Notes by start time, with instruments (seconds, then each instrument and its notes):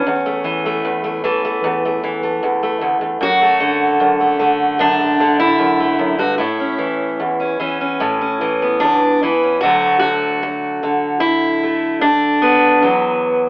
Already playing: steel-string acoustic guitar C#4
0.07 steel-string acoustic guitar E2
0.26 steel-string acoustic guitar A3
0.44 steel-string acoustic guitar E3
0.66 steel-string acoustic guitar A3
0.85 steel-string acoustic guitar E2
1.04 steel-string acoustic guitar A3
1.24 steel-string acoustic guitar E3 A3
1.45 steel-string acoustic guitar A3
1.64 steel-string acoustic guitar E2
1.85 steel-string acoustic guitar A3
2.04 steel-string acoustic guitar E3
2.23 steel-string acoustic guitar A3
2.43 steel-string acoustic guitar E2
2.63 steel-string acoustic guitar A3
2.81 steel-string acoustic guitar D2
3.01 steel-string acoustic guitar E2
3.21 steel-string acoustic guitar F#2 F#4
3.42 steel-string acoustic guitar A3
3.60 steel-string acoustic guitar D3
4.00 steel-string acoustic guitar F#2
4.20 steel-string acoustic guitar A3
4.39 steel-string acoustic guitar D3 A3
4.79 steel-string acoustic guitar F#2 D4
5.00 steel-string acoustic guitar A3
5.20 steel-string acoustic guitar D3
5.40 steel-string acoustic guitar E4
5.59 steel-string acoustic guitar F#2
5.80 steel-string acoustic guitar A3
5.99 steel-string acoustic guitar F#2
6.18 steel-string acoustic guitar G2 F#4
6.38 steel-string acoustic guitar A2 E4
6.60 steel-string acoustic guitar C#4
6.78 steel-string acoustic guitar E3
7.20 steel-string acoustic guitar E2
7.40 steel-string acoustic guitar C#4
7.60 steel-string acoustic guitar E3 C#4
7.81 steel-string acoustic guitar C#4
8.00 steel-string acoustic guitar A2
8.21 steel-string acoustic guitar C#4
8.41 steel-string acoustic guitar E3
8.62 steel-string acoustic guitar B3
8.80 steel-string acoustic guitar E2 D4
9.23 steel-string acoustic guitar E3 E4
9.43 steel-string acoustic guitar C#4
9.61 steel-string acoustic guitar D2 D3 F#3 A3 F#4
9.99 steel-string acoustic guitar F#4
10.43 muted steel-string acoustic guitar stroke
10.83 steel-string acoustic guitar D3
11.20 steel-string acoustic guitar E4
11.63 steel-string acoustic guitar A3
12.01 steel-string acoustic guitar D4, muted steel-string acoustic guitar stroke
12.42 steel-string acoustic guitar B3
12.82 steel-string acoustic guitar E2 E3 F#3